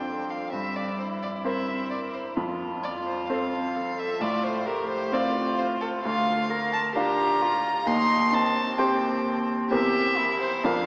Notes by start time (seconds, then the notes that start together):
Already playing: F2 C4 D4 A4 C5 G5
0.30 F5
0.52 G2 C4 E5
0.76 D5
0.99 E4 C5
1.23 D5
1.45 C4 A#4 C5 E5
1.90 D5
2.14 C5
2.36 F2 F4
2.83 D5
3.06 C5
3.29 C4 A4 C5 F5
3.76 A4
3.99 E5
4.20 A2 F4 D5
4.43 C5
4.66 G4 A#4
4.89 C5
5.11 C4 F4 C5 D5
5.57 C5
5.81 A4
6.04 D2 F4 F5
6.51 A#4
6.73 A5
6.96 D4 F4 G4 F5 A#5
7.42 F4
7.86 D#2 D#4 C6
8.33 C4 A5
8.78 C4 G4 C5 G5
9.70 E2 C4 G4 A#4 E5
10.17 E4
10.41 C5
10.63 F2 D4 F4 A#4 F5